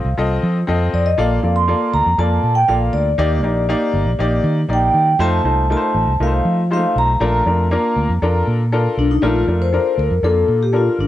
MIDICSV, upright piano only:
0, 0, Header, 1, 2, 480
1, 0, Start_track
1, 0, Key_signature, -2, "major"
1, 0, Tempo, 502934
1, 1130, Time_signature, 4, 2, 24, 8
1, 10570, End_track
2, 0, Start_track
2, 0, Title_t, "Upright piano"
2, 0, Program_c, 0, 0
2, 167, Note_on_c, 0, 60, 80
2, 167, Note_on_c, 0, 65, 76
2, 172, Note_on_c, 0, 69, 78
2, 177, Note_on_c, 0, 75, 92
2, 543, Note_off_c, 0, 60, 0
2, 543, Note_off_c, 0, 65, 0
2, 545, Note_off_c, 0, 69, 0
2, 547, Note_off_c, 0, 75, 0
2, 641, Note_on_c, 0, 60, 88
2, 647, Note_on_c, 0, 65, 68
2, 649, Note_on_c, 0, 69, 76
2, 655, Note_on_c, 0, 75, 89
2, 1019, Note_off_c, 0, 60, 0
2, 1022, Note_off_c, 0, 65, 0
2, 1023, Note_off_c, 0, 69, 0
2, 1026, Note_off_c, 0, 75, 0
2, 1123, Note_on_c, 0, 58, 84
2, 1124, Note_on_c, 0, 65, 77
2, 1128, Note_on_c, 0, 69, 85
2, 1132, Note_on_c, 0, 74, 96
2, 1313, Note_off_c, 0, 58, 0
2, 1313, Note_off_c, 0, 65, 0
2, 1316, Note_off_c, 0, 69, 0
2, 1318, Note_off_c, 0, 74, 0
2, 1360, Note_on_c, 0, 58, 58
2, 1365, Note_on_c, 0, 65, 60
2, 1368, Note_on_c, 0, 69, 54
2, 1374, Note_on_c, 0, 74, 67
2, 1551, Note_off_c, 0, 58, 0
2, 1554, Note_off_c, 0, 65, 0
2, 1555, Note_off_c, 0, 69, 0
2, 1558, Note_off_c, 0, 74, 0
2, 1599, Note_on_c, 0, 58, 78
2, 1604, Note_on_c, 0, 65, 66
2, 1609, Note_on_c, 0, 69, 69
2, 1611, Note_on_c, 0, 74, 74
2, 1977, Note_off_c, 0, 58, 0
2, 1980, Note_off_c, 0, 65, 0
2, 1982, Note_off_c, 0, 69, 0
2, 1983, Note_off_c, 0, 74, 0
2, 2082, Note_on_c, 0, 58, 69
2, 2085, Note_on_c, 0, 65, 63
2, 2087, Note_on_c, 0, 69, 65
2, 2093, Note_on_c, 0, 74, 77
2, 2458, Note_off_c, 0, 58, 0
2, 2459, Note_off_c, 0, 65, 0
2, 2460, Note_off_c, 0, 69, 0
2, 2463, Note_off_c, 0, 74, 0
2, 2558, Note_on_c, 0, 58, 74
2, 2563, Note_on_c, 0, 65, 63
2, 2565, Note_on_c, 0, 69, 57
2, 2568, Note_on_c, 0, 74, 71
2, 2936, Note_off_c, 0, 58, 0
2, 2938, Note_off_c, 0, 65, 0
2, 2939, Note_off_c, 0, 69, 0
2, 2941, Note_off_c, 0, 74, 0
2, 3035, Note_on_c, 0, 58, 85
2, 3035, Note_on_c, 0, 63, 82
2, 3042, Note_on_c, 0, 67, 83
2, 3044, Note_on_c, 0, 74, 104
2, 3227, Note_off_c, 0, 58, 0
2, 3227, Note_off_c, 0, 63, 0
2, 3231, Note_off_c, 0, 67, 0
2, 3231, Note_off_c, 0, 74, 0
2, 3273, Note_on_c, 0, 58, 68
2, 3282, Note_on_c, 0, 63, 64
2, 3282, Note_on_c, 0, 67, 55
2, 3284, Note_on_c, 0, 74, 66
2, 3466, Note_off_c, 0, 58, 0
2, 3470, Note_off_c, 0, 63, 0
2, 3470, Note_off_c, 0, 67, 0
2, 3471, Note_off_c, 0, 74, 0
2, 3519, Note_on_c, 0, 58, 89
2, 3522, Note_on_c, 0, 63, 79
2, 3526, Note_on_c, 0, 67, 71
2, 3529, Note_on_c, 0, 74, 103
2, 3895, Note_off_c, 0, 58, 0
2, 3897, Note_off_c, 0, 63, 0
2, 3899, Note_off_c, 0, 67, 0
2, 3900, Note_off_c, 0, 74, 0
2, 3996, Note_on_c, 0, 58, 81
2, 4004, Note_on_c, 0, 63, 73
2, 4004, Note_on_c, 0, 67, 75
2, 4011, Note_on_c, 0, 74, 96
2, 4374, Note_off_c, 0, 58, 0
2, 4378, Note_off_c, 0, 63, 0
2, 4378, Note_off_c, 0, 67, 0
2, 4381, Note_off_c, 0, 74, 0
2, 4472, Note_on_c, 0, 58, 64
2, 4477, Note_on_c, 0, 63, 69
2, 4477, Note_on_c, 0, 67, 56
2, 4482, Note_on_c, 0, 74, 76
2, 4852, Note_off_c, 0, 58, 0
2, 4854, Note_off_c, 0, 63, 0
2, 4854, Note_off_c, 0, 67, 0
2, 4857, Note_off_c, 0, 74, 0
2, 4955, Note_on_c, 0, 57, 94
2, 4961, Note_on_c, 0, 63, 83
2, 4963, Note_on_c, 0, 65, 84
2, 4965, Note_on_c, 0, 72, 113
2, 5146, Note_off_c, 0, 57, 0
2, 5149, Note_off_c, 0, 63, 0
2, 5150, Note_off_c, 0, 65, 0
2, 5151, Note_off_c, 0, 72, 0
2, 5195, Note_on_c, 0, 57, 62
2, 5197, Note_on_c, 0, 63, 66
2, 5201, Note_on_c, 0, 65, 55
2, 5205, Note_on_c, 0, 72, 71
2, 5386, Note_off_c, 0, 57, 0
2, 5387, Note_off_c, 0, 63, 0
2, 5389, Note_off_c, 0, 65, 0
2, 5391, Note_off_c, 0, 72, 0
2, 5437, Note_on_c, 0, 57, 73
2, 5442, Note_on_c, 0, 63, 67
2, 5445, Note_on_c, 0, 65, 68
2, 5449, Note_on_c, 0, 70, 69
2, 5504, Note_off_c, 0, 70, 0
2, 5505, Note_on_c, 0, 72, 82
2, 5814, Note_off_c, 0, 57, 0
2, 5816, Note_off_c, 0, 63, 0
2, 5818, Note_off_c, 0, 65, 0
2, 5848, Note_off_c, 0, 72, 0
2, 5918, Note_on_c, 0, 57, 70
2, 5918, Note_on_c, 0, 63, 65
2, 5922, Note_on_c, 0, 65, 60
2, 5926, Note_on_c, 0, 70, 64
2, 5983, Note_off_c, 0, 70, 0
2, 5984, Note_on_c, 0, 72, 72
2, 6295, Note_off_c, 0, 57, 0
2, 6295, Note_off_c, 0, 63, 0
2, 6297, Note_off_c, 0, 65, 0
2, 6328, Note_off_c, 0, 72, 0
2, 6397, Note_on_c, 0, 56, 56
2, 6400, Note_on_c, 0, 63, 61
2, 6402, Note_on_c, 0, 65, 66
2, 6408, Note_on_c, 0, 72, 82
2, 6453, Note_on_c, 0, 57, 69
2, 6458, Note_off_c, 0, 56, 0
2, 6776, Note_off_c, 0, 63, 0
2, 6777, Note_off_c, 0, 65, 0
2, 6780, Note_off_c, 0, 72, 0
2, 6803, Note_off_c, 0, 57, 0
2, 6873, Note_on_c, 0, 57, 86
2, 6880, Note_on_c, 0, 62, 91
2, 6883, Note_on_c, 0, 65, 87
2, 6883, Note_on_c, 0, 70, 102
2, 7066, Note_off_c, 0, 57, 0
2, 7069, Note_off_c, 0, 62, 0
2, 7071, Note_off_c, 0, 65, 0
2, 7071, Note_off_c, 0, 70, 0
2, 7117, Note_on_c, 0, 57, 58
2, 7121, Note_on_c, 0, 62, 66
2, 7126, Note_on_c, 0, 65, 63
2, 7130, Note_on_c, 0, 70, 71
2, 7308, Note_off_c, 0, 57, 0
2, 7310, Note_off_c, 0, 62, 0
2, 7312, Note_off_c, 0, 65, 0
2, 7314, Note_off_c, 0, 70, 0
2, 7359, Note_on_c, 0, 58, 94
2, 7364, Note_on_c, 0, 62, 84
2, 7369, Note_on_c, 0, 65, 76
2, 7373, Note_on_c, 0, 70, 90
2, 7736, Note_off_c, 0, 58, 0
2, 7739, Note_off_c, 0, 62, 0
2, 7741, Note_off_c, 0, 65, 0
2, 7743, Note_off_c, 0, 70, 0
2, 7845, Note_on_c, 0, 69, 80
2, 7849, Note_on_c, 0, 62, 82
2, 7852, Note_on_c, 0, 65, 68
2, 7857, Note_on_c, 0, 70, 89
2, 8219, Note_off_c, 0, 69, 0
2, 8221, Note_off_c, 0, 62, 0
2, 8223, Note_off_c, 0, 65, 0
2, 8225, Note_off_c, 0, 70, 0
2, 8326, Note_on_c, 0, 69, 88
2, 8327, Note_on_c, 0, 62, 71
2, 8332, Note_on_c, 0, 65, 71
2, 8333, Note_on_c, 0, 70, 81
2, 8700, Note_off_c, 0, 69, 0
2, 8701, Note_off_c, 0, 62, 0
2, 8703, Note_off_c, 0, 65, 0
2, 8704, Note_off_c, 0, 70, 0
2, 8798, Note_on_c, 0, 57, 90
2, 8803, Note_on_c, 0, 62, 83
2, 8808, Note_on_c, 0, 65, 89
2, 8812, Note_on_c, 0, 70, 92
2, 8989, Note_off_c, 0, 57, 0
2, 8992, Note_off_c, 0, 62, 0
2, 8994, Note_off_c, 0, 65, 0
2, 8996, Note_off_c, 0, 70, 0
2, 9039, Note_on_c, 0, 57, 66
2, 9044, Note_on_c, 0, 62, 56
2, 9050, Note_on_c, 0, 65, 58
2, 9052, Note_on_c, 0, 70, 70
2, 9230, Note_off_c, 0, 57, 0
2, 9233, Note_off_c, 0, 62, 0
2, 9235, Note_off_c, 0, 65, 0
2, 9236, Note_off_c, 0, 70, 0
2, 9282, Note_on_c, 0, 69, 73
2, 9289, Note_on_c, 0, 62, 67
2, 9290, Note_on_c, 0, 65, 65
2, 9294, Note_on_c, 0, 70, 86
2, 9659, Note_off_c, 0, 69, 0
2, 9662, Note_off_c, 0, 62, 0
2, 9663, Note_off_c, 0, 65, 0
2, 9665, Note_off_c, 0, 70, 0
2, 9765, Note_on_c, 0, 69, 68
2, 9768, Note_on_c, 0, 62, 66
2, 9773, Note_on_c, 0, 65, 61
2, 9775, Note_on_c, 0, 58, 72
2, 10141, Note_off_c, 0, 69, 0
2, 10142, Note_off_c, 0, 62, 0
2, 10145, Note_off_c, 0, 65, 0
2, 10146, Note_off_c, 0, 58, 0
2, 10238, Note_on_c, 0, 69, 70
2, 10242, Note_on_c, 0, 62, 64
2, 10245, Note_on_c, 0, 65, 57
2, 10246, Note_on_c, 0, 70, 77
2, 10570, Note_off_c, 0, 62, 0
2, 10570, Note_off_c, 0, 65, 0
2, 10570, Note_off_c, 0, 69, 0
2, 10570, Note_off_c, 0, 70, 0
2, 10570, End_track
0, 0, End_of_file